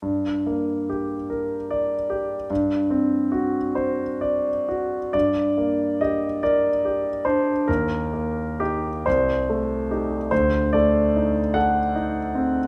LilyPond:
\new Staff \with { instrumentName = "Grand piano" } { \time 6/8 \key g \minor \tempo 4. = 48 << { r2. | r2. | d''4 ees''8 d''4 c''8 | bes'4 g'8 c''4. |
c''8 d''4 fis''4. | } \\ { g,8 bes8 g'8 bes'8 d''8 g'8 | g,8 c'8 fis'8 c''8 d''8 fis'8 | g,8 bes8 g'8 bes'8 g'8 d'8 | ees,8 bes8 ees'8 c,8 a8 <ees' g'>8 |
d,8 a8 ees'8 a'8 ees'8 c'8 | } >> }